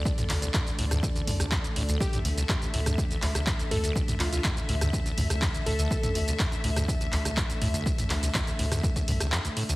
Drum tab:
HH |-xox-xox-xox-xox|-xox-xox-xox-xox|-xox-xox-xox-xox|-xox-xox-xox-xox|
SH |xx-xxx-xxx-xxx-x|xx-xxx-xxx-xxx-x|xx-xxx-xxx-xxx-x|xx-xxx-xxx-xxx-x|
CP |--x-x-------x---|----x-----x-x---|--x-x-------x---|----x-----x-x---|
SD |-------r---r----|-------r---r----|-------r---r----|-------r---r----|
T2 |-o-----o--o-----|-o-----o------o-|-o-----o--o-----|-o-----o------o-|
BD |o---o---o---o---|o---o---o---o---|o---o---o---o---|o---o---o---o---|

HH |-xox-xox-xox-xox|
SH |xx-xxx-xxx-xxx-x|
CP |--x-x-------x---|
SD |-------r---r----|
T2 |-o-----o--o-----|
BD |o---o---oo------|